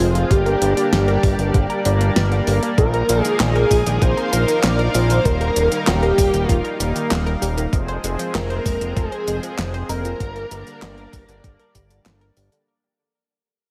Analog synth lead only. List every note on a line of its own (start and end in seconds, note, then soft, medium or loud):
0.00 0.32 F4 loud
0.31 0.92 G4 loud
0.92 1.81 G4 loud
2.78 3.22 A#4 loud
3.22 3.40 G#4 loud
3.40 4.03 G#4 loud
4.02 4.32 C5 loud
4.32 4.65 A#4 loud
4.63 4.95 D5 loud
4.94 5.25 C5 loud
5.25 5.83 A#4 loud
5.87 6.50 G4 medium
6.50 6.76 F4 medium
8.35 8.93 A#4 loud
8.97 9.54 G#4 loud
9.89 12.02 A#4 loud